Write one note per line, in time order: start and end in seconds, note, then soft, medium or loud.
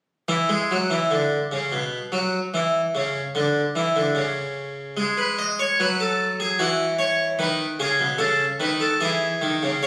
0.28 0.48 E3 medium
0.49 0.69 G#3 medium
0.71 0.90 F#3 medium
0.90 1.10 E3 medium
1.11 1.36 D3 medium
1.52 1.71 C#3 medium
1.72 1.97 B2 medium
2.12 2.38 F#3 medium
2.54 2.79 E3 medium
2.95 3.20 C#3 medium
3.35 3.60 D3 medium
3.75 3.95 E3 medium
3.96 4.15 D3 medium
4.15 4.94 C#3 medium
4.97 5.76 G#3 medium
5.18 5.37 B4 medium
5.39 5.58 D#5 medium
5.59 5.78 C#5 medium
5.80 6.57 F#3 medium
5.80 5.99 B4 medium
6.00 6.25 A4 medium
6.40 6.59 G#4 medium
6.59 7.37 E3 medium
6.59 6.84 F#4 medium
6.99 7.24 C#5 medium
7.39 7.64 D#3 medium
7.39 7.64 B4 medium
7.80 7.99 C#3 medium
7.80 8.05 G#4 medium
7.99 8.19 B2 medium
8.18 8.44 C#3 medium
8.18 8.44 A4 medium
8.60 8.85 D#3 medium
8.60 8.80 B4 medium
8.80 9.00 A4 medium
9.01 9.26 E3 medium
9.01 9.80 G#4 medium
9.41 9.62 D#3 medium
9.63 9.82 C#3 medium
9.83 9.87 C#3 medium
9.83 9.87 C#5 medium